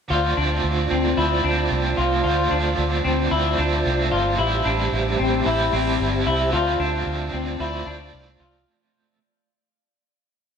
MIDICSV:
0, 0, Header, 1, 6, 480
1, 0, Start_track
1, 0, Key_signature, -1, "minor"
1, 0, Tempo, 535714
1, 90, Time_signature, 4, 2, 24, 8
1, 9479, End_track
2, 0, Start_track
2, 0, Title_t, "Synth texture"
2, 0, Program_c, 0, 99
2, 4314, Note_on_c, 0, 76, 60
2, 5502, Note_off_c, 0, 76, 0
2, 5953, Note_on_c, 0, 74, 66
2, 5997, Note_on_c, 0, 77, 58
2, 7138, Note_off_c, 0, 74, 0
2, 7160, Note_off_c, 0, 77, 0
2, 9479, End_track
3, 0, Start_track
3, 0, Title_t, "Tonewheel organ"
3, 0, Program_c, 1, 16
3, 87, Note_on_c, 1, 65, 51
3, 87, Note_on_c, 1, 74, 48
3, 89, Note_on_c, 1, 72, 53
3, 90, Note_on_c, 1, 81, 60
3, 3892, Note_off_c, 1, 65, 0
3, 3893, Note_off_c, 1, 74, 0
3, 3928, Note_on_c, 1, 67, 53
3, 3934, Note_on_c, 1, 76, 50
3, 5830, Note_off_c, 1, 67, 0
3, 5833, Note_off_c, 1, 76, 0
3, 5850, Note_on_c, 1, 65, 53
3, 5851, Note_on_c, 1, 74, 53
3, 7733, Note_off_c, 1, 72, 0
3, 7734, Note_off_c, 1, 81, 0
3, 7750, Note_off_c, 1, 65, 0
3, 7751, Note_off_c, 1, 74, 0
3, 9479, End_track
4, 0, Start_track
4, 0, Title_t, "Clean electric guitar"
4, 0, Program_c, 2, 27
4, 94, Note_on_c, 2, 65, 78
4, 332, Note_off_c, 2, 65, 0
4, 333, Note_on_c, 2, 62, 63
4, 811, Note_off_c, 2, 62, 0
4, 814, Note_on_c, 2, 60, 68
4, 1051, Note_on_c, 2, 64, 77
4, 1052, Note_off_c, 2, 60, 0
4, 1290, Note_off_c, 2, 64, 0
4, 1290, Note_on_c, 2, 62, 60
4, 1767, Note_on_c, 2, 65, 66
4, 1770, Note_off_c, 2, 62, 0
4, 1995, Note_off_c, 2, 65, 0
4, 2006, Note_on_c, 2, 65, 76
4, 2248, Note_off_c, 2, 65, 0
4, 2248, Note_on_c, 2, 62, 67
4, 2724, Note_off_c, 2, 62, 0
4, 2728, Note_on_c, 2, 60, 69
4, 2968, Note_on_c, 2, 64, 81
4, 2969, Note_off_c, 2, 60, 0
4, 3207, Note_on_c, 2, 62, 69
4, 3209, Note_off_c, 2, 64, 0
4, 3687, Note_on_c, 2, 65, 71
4, 3688, Note_off_c, 2, 62, 0
4, 3924, Note_off_c, 2, 65, 0
4, 3928, Note_on_c, 2, 64, 80
4, 4169, Note_off_c, 2, 64, 0
4, 4169, Note_on_c, 2, 62, 63
4, 4649, Note_off_c, 2, 62, 0
4, 4653, Note_on_c, 2, 60, 71
4, 4891, Note_off_c, 2, 60, 0
4, 4893, Note_on_c, 2, 64, 81
4, 5131, Note_off_c, 2, 64, 0
4, 5134, Note_on_c, 2, 60, 70
4, 5612, Note_off_c, 2, 60, 0
4, 5615, Note_on_c, 2, 64, 74
4, 5847, Note_off_c, 2, 64, 0
4, 5851, Note_on_c, 2, 65, 88
4, 6090, Note_off_c, 2, 65, 0
4, 6091, Note_on_c, 2, 62, 69
4, 6567, Note_off_c, 2, 62, 0
4, 6571, Note_on_c, 2, 60, 65
4, 6810, Note_off_c, 2, 60, 0
4, 6813, Note_on_c, 2, 64, 77
4, 7050, Note_on_c, 2, 62, 70
4, 7051, Note_off_c, 2, 64, 0
4, 7527, Note_on_c, 2, 65, 68
4, 7530, Note_off_c, 2, 62, 0
4, 7769, Note_off_c, 2, 65, 0
4, 9479, End_track
5, 0, Start_track
5, 0, Title_t, "Overdriven electric guitar"
5, 0, Program_c, 3, 29
5, 74, Note_on_c, 3, 50, 73
5, 95, Note_on_c, 3, 57, 71
5, 114, Note_on_c, 3, 60, 73
5, 131, Note_on_c, 3, 65, 80
5, 1027, Note_off_c, 3, 50, 0
5, 1038, Note_on_c, 3, 50, 53
5, 1049, Note_off_c, 3, 57, 0
5, 1053, Note_on_c, 3, 57, 56
5, 1062, Note_off_c, 3, 60, 0
5, 1063, Note_off_c, 3, 65, 0
5, 1065, Note_on_c, 3, 60, 63
5, 1074, Note_on_c, 3, 65, 63
5, 1271, Note_off_c, 3, 65, 0
5, 1282, Note_on_c, 3, 65, 50
5, 1284, Note_off_c, 3, 50, 0
5, 1290, Note_off_c, 3, 60, 0
5, 1291, Note_off_c, 3, 57, 0
5, 1301, Note_on_c, 3, 60, 51
5, 1318, Note_on_c, 3, 57, 45
5, 1993, Note_on_c, 3, 50, 69
5, 2006, Note_off_c, 3, 65, 0
5, 2013, Note_off_c, 3, 57, 0
5, 2017, Note_on_c, 3, 57, 67
5, 2020, Note_off_c, 3, 60, 0
5, 2035, Note_on_c, 3, 60, 70
5, 2051, Note_on_c, 3, 65, 69
5, 2947, Note_off_c, 3, 50, 0
5, 2958, Note_on_c, 3, 50, 63
5, 2968, Note_off_c, 3, 57, 0
5, 2972, Note_on_c, 3, 57, 71
5, 2981, Note_off_c, 3, 60, 0
5, 2984, Note_off_c, 3, 65, 0
5, 2984, Note_on_c, 3, 60, 64
5, 2994, Note_on_c, 3, 65, 70
5, 3183, Note_off_c, 3, 65, 0
5, 3194, Note_on_c, 3, 65, 52
5, 3204, Note_off_c, 3, 50, 0
5, 3204, Note_off_c, 3, 60, 0
5, 3211, Note_off_c, 3, 57, 0
5, 3215, Note_on_c, 3, 60, 50
5, 3231, Note_on_c, 3, 57, 47
5, 3907, Note_on_c, 3, 45, 71
5, 3922, Note_off_c, 3, 65, 0
5, 3926, Note_on_c, 3, 52, 70
5, 3938, Note_off_c, 3, 57, 0
5, 3942, Note_on_c, 3, 55, 76
5, 3950, Note_off_c, 3, 60, 0
5, 3954, Note_on_c, 3, 60, 75
5, 3965, Note_on_c, 3, 64, 92
5, 4866, Note_off_c, 3, 52, 0
5, 4877, Note_on_c, 3, 52, 57
5, 4878, Note_off_c, 3, 45, 0
5, 4882, Note_off_c, 3, 55, 0
5, 4892, Note_on_c, 3, 55, 63
5, 4901, Note_off_c, 3, 60, 0
5, 4904, Note_off_c, 3, 64, 0
5, 4904, Note_on_c, 3, 60, 64
5, 4915, Note_on_c, 3, 64, 61
5, 5111, Note_off_c, 3, 64, 0
5, 5122, Note_on_c, 3, 64, 54
5, 5123, Note_off_c, 3, 52, 0
5, 5131, Note_off_c, 3, 55, 0
5, 5133, Note_off_c, 3, 60, 0
5, 5144, Note_on_c, 3, 60, 45
5, 5159, Note_on_c, 3, 55, 40
5, 5835, Note_on_c, 3, 50, 71
5, 5846, Note_off_c, 3, 64, 0
5, 5851, Note_off_c, 3, 55, 0
5, 5855, Note_on_c, 3, 57, 74
5, 5862, Note_off_c, 3, 60, 0
5, 5874, Note_on_c, 3, 60, 81
5, 5891, Note_on_c, 3, 65, 77
5, 6794, Note_off_c, 3, 50, 0
5, 6797, Note_on_c, 3, 50, 55
5, 6809, Note_off_c, 3, 57, 0
5, 6813, Note_on_c, 3, 57, 59
5, 6820, Note_off_c, 3, 60, 0
5, 6824, Note_on_c, 3, 60, 56
5, 6833, Note_off_c, 3, 65, 0
5, 6837, Note_on_c, 3, 65, 63
5, 7023, Note_off_c, 3, 65, 0
5, 7033, Note_on_c, 3, 65, 54
5, 7043, Note_off_c, 3, 50, 0
5, 7043, Note_off_c, 3, 60, 0
5, 7051, Note_off_c, 3, 57, 0
5, 7054, Note_on_c, 3, 60, 44
5, 7070, Note_on_c, 3, 57, 43
5, 8228, Note_off_c, 3, 57, 0
5, 8228, Note_off_c, 3, 60, 0
5, 8228, Note_off_c, 3, 65, 0
5, 9479, End_track
6, 0, Start_track
6, 0, Title_t, "Fingered electric bass"
6, 0, Program_c, 4, 33
6, 92, Note_on_c, 4, 38, 87
6, 302, Note_off_c, 4, 38, 0
6, 334, Note_on_c, 4, 38, 81
6, 543, Note_off_c, 4, 38, 0
6, 573, Note_on_c, 4, 38, 84
6, 783, Note_off_c, 4, 38, 0
6, 814, Note_on_c, 4, 38, 74
6, 1024, Note_off_c, 4, 38, 0
6, 1052, Note_on_c, 4, 38, 91
6, 1262, Note_off_c, 4, 38, 0
6, 1291, Note_on_c, 4, 38, 83
6, 1502, Note_off_c, 4, 38, 0
6, 1531, Note_on_c, 4, 36, 78
6, 1741, Note_off_c, 4, 36, 0
6, 1773, Note_on_c, 4, 36, 85
6, 1983, Note_off_c, 4, 36, 0
6, 2011, Note_on_c, 4, 38, 94
6, 2222, Note_off_c, 4, 38, 0
6, 2251, Note_on_c, 4, 38, 79
6, 2461, Note_off_c, 4, 38, 0
6, 2491, Note_on_c, 4, 38, 84
6, 2702, Note_off_c, 4, 38, 0
6, 2732, Note_on_c, 4, 38, 78
6, 2942, Note_off_c, 4, 38, 0
6, 2971, Note_on_c, 4, 38, 86
6, 3181, Note_off_c, 4, 38, 0
6, 3212, Note_on_c, 4, 38, 93
6, 3422, Note_off_c, 4, 38, 0
6, 3453, Note_on_c, 4, 36, 77
6, 3662, Note_off_c, 4, 36, 0
6, 3690, Note_on_c, 4, 31, 91
6, 3901, Note_off_c, 4, 31, 0
6, 3929, Note_on_c, 4, 33, 98
6, 4141, Note_off_c, 4, 33, 0
6, 4171, Note_on_c, 4, 33, 87
6, 4382, Note_off_c, 4, 33, 0
6, 4411, Note_on_c, 4, 33, 83
6, 4622, Note_off_c, 4, 33, 0
6, 4654, Note_on_c, 4, 33, 86
6, 4863, Note_off_c, 4, 33, 0
6, 4891, Note_on_c, 4, 33, 85
6, 5102, Note_off_c, 4, 33, 0
6, 5133, Note_on_c, 4, 33, 83
6, 5343, Note_off_c, 4, 33, 0
6, 5375, Note_on_c, 4, 31, 79
6, 5584, Note_off_c, 4, 31, 0
6, 5614, Note_on_c, 4, 36, 75
6, 5823, Note_off_c, 4, 36, 0
6, 5849, Note_on_c, 4, 38, 87
6, 6060, Note_off_c, 4, 38, 0
6, 6090, Note_on_c, 4, 38, 85
6, 6301, Note_off_c, 4, 38, 0
6, 6328, Note_on_c, 4, 38, 84
6, 6540, Note_off_c, 4, 38, 0
6, 6568, Note_on_c, 4, 38, 75
6, 6780, Note_off_c, 4, 38, 0
6, 6809, Note_on_c, 4, 38, 94
6, 7020, Note_off_c, 4, 38, 0
6, 7047, Note_on_c, 4, 38, 98
6, 7259, Note_off_c, 4, 38, 0
6, 7286, Note_on_c, 4, 36, 76
6, 7499, Note_off_c, 4, 36, 0
6, 7527, Note_on_c, 4, 36, 85
6, 7739, Note_off_c, 4, 36, 0
6, 9479, End_track
0, 0, End_of_file